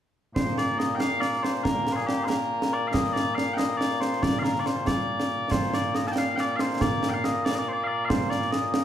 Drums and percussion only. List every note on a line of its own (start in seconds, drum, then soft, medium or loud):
0.36 concert bass drum medium
0.36 snare loud
0.47 snare soft
0.58 snare medium
0.80 snare medium
1.00 snare medium
1.22 snare medium
1.33 snare soft
1.44 snare medium
1.55 snare soft
1.65 concert bass drum medium
1.65 snare medium
1.87 snare medium
1.98 snare soft
2.09 snare medium
2.30 snare loud
2.62 snare medium
2.94 concert bass drum medium
2.94 snare medium
3.05 snare soft
3.16 snare medium
3.38 snare medium
3.59 snare loud
3.81 snare medium
3.91 snare soft
4.02 snare medium
4.13 snare soft
4.23 concert bass drum medium
4.23 snare medium
4.45 snare medium
4.56 snare soft
4.66 snare medium
4.87 concert bass drum medium
4.87 snare medium
5.20 snare medium
5.51 concert bass drum medium
5.51 snare medium
5.63 snare soft
5.74 snare medium
5.95 snare medium
6.16 snare loud
6.38 snare medium
6.59 snare medium
6.70 snare soft
6.81 concert bass drum medium
6.81 snare medium
7.03 snare medium
7.24 snare medium
7.46 snare medium
8.10 concert bass drum medium
8.10 snare medium
8.21 snare soft
8.31 snare medium
8.42 snare soft
8.53 snare medium
8.74 snare medium